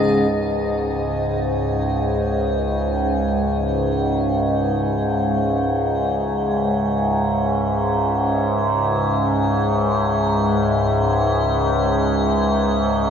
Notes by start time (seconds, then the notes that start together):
Already playing: C#2 G#2 C#4 G#4 D#5
0.30 C#2 G#2 C#5
2.05 E5